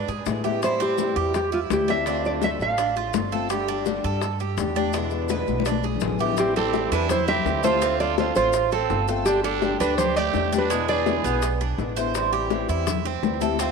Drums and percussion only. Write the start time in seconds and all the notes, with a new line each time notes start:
0.08 high bongo, high conga, maracas
0.26 high bongo, low bongo, high conga, maracas
0.44 high conga, maracas
0.62 high bongo, high conga, maracas
0.80 high conga, maracas
0.98 high bongo, high conga, maracas
1.16 high conga, maracas
1.34 high bongo, high conga, maracas
1.52 high conga, maracas
1.70 high bongo, low bongo, high conga, maracas
1.88 high conga, maracas
2.06 high bongo, high conga, maracas
2.24 high bongo, high conga, maracas
2.42 high bongo, high conga, maracas
2.60 high bongo, maracas
2.78 high bongo, high conga, maracas
2.96 high bongo, high conga, maracas
3.14 high bongo, low bongo, high conga, maracas
3.32 high conga, maracas
3.49 high bongo, high conga, maracas
3.68 high conga, maracas
3.86 high bongo, high conga, maracas
4.04 high conga, maracas
4.21 high bongo, high conga, maracas
4.40 high conga, maracas
4.57 high bongo, low bongo, high conga, maracas
4.75 high conga, maracas
4.93 high bongo, high conga, maracas
5.10 high bongo, high conga, maracas
5.29 high bongo, high conga, maracas
5.47 high bongo, high conga, maracas
5.60 high conga
5.65 high bongo, maracas
5.72 high conga
5.83 high bongo, high conga, maracas
5.96 low conga
6.00 high bongo, low bongo, maracas
6.08 low conga
6.19 low conga, maracas
6.32 low conga
6.37 high bongo, high conga, maracas
6.56 high conga, maracas
6.74 high bongo, high conga, maracas
6.92 high bongo, high conga, maracas
7.09 high bongo, high conga, low conga, maracas
7.27 high bongo, high conga, low conga, maracas
7.46 high bongo, low bongo, high conga, maracas
7.63 high bongo, high conga, maracas
7.82 high bongo, high conga, maracas
8.00 high conga, maracas
8.18 high bongo, high conga, maracas
8.35 high bongo, high conga, maracas
8.53 high bongo, high conga, maracas
8.71 high bongo, high conga, maracas
8.90 high bongo, low bongo, high conga, maracas
9.08 high bongo, high conga, maracas
9.26 high bongo, high conga, maracas
9.44 high conga, maracas
9.62 high bongo, high conga, maracas
9.80 high bongo, high conga, maracas
9.98 high bongo, high conga, low conga, maracas
10.16 high bongo, high conga, maracas
10.34 high bongo, low bongo, high conga, maracas
10.52 high bongo, high conga, maracas
10.70 high bongo, high conga, maracas
10.88 maracas
11.06 high bongo, high conga, maracas
11.24 high bongo, high conga, maracas
11.42 high bongo, high conga, maracas
11.61 high bongo, high conga, maracas
11.79 high bongo, low bongo, high conga, maracas
11.97 high bongo, high conga, maracas
12.15 high bongo, high conga, maracas
12.33 high conga, maracas
12.50 high bongo, high conga, maracas
12.69 high bongo, high conga, maracas
12.87 high bongo, high conga, low conga, maracas
13.05 high bongo, high conga, maracas
13.23 high bongo, low bongo, high conga, maracas
13.41 high bongo, high conga, maracas
13.59 high bongo, high conga, maracas